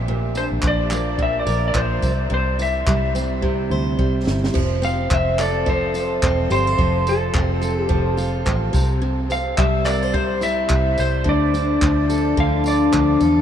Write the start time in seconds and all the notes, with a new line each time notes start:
Already playing: A#1
0.08 A#2
0.35 D4 C5, tambourine
0.52 A#1
0.62 A#1 F3, kick, clap
0.67 D5
0.91 A#3, clap, tambourine
1.19 A#2 E5, kick
1.40 D5
1.47 A#1 A#4, tambourine
1.68 D5
1.74 A#1 F3 C5, kick, clap
2.02 C2 C3, kick, tambourine
2.30 C2 C3
2.34 C5
2.59 E4 E5, tambourine
2.87 C2 G3, kick, clap
3.15 C4, tambourine
3.42 C3, kick
3.70 D2 C5
3.99 C2 G3, kick
4.26 G1 E4, snare
4.44 snare
4.54 F1 F3, kick, crash
4.82 C4 F5, tambourine
5.10 F1 C4 E5, kick, clap
5.39 A4 D5, clap, tambourine
5.66 F3 C5, kick
5.94 F4, tambourine
6.23 E1 C4, kick, clap
6.50 G1 G4 C5, tambourine
6.67 A4
6.78 F1 F3, kick
7.07 C4 A4, tambourine
7.34 F1 C4, kick, clap
7.62 A4, tambourine
7.83 G4
7.89 F1 F3, kick
8.17 F4, tambourine
8.46 A1 C4, kick, clap
8.73 C2 C3, kick, tambourine
9.02 C3
9.30 C4 F5, tambourine
9.58 C2 G3 E5, kick, clap
9.85 A#4 D5, clap, tambourine
10.03 C5
10.14 C3 C5, kick
10.41 E4 E5, tambourine
10.69 C2 G3, kick, clap
10.98 C2 C5, tambourine
11.24 D2 D3, kick
11.29 D5
11.54 D4, tambourine
11.82 D2 F3, kick, clap
12.09 A4, tambourine
12.37 D2 D3 F5, kick
12.64 F4 D5, tambourine
12.92 D2 F3, kick, clap
13.20 E2 A4, tambourine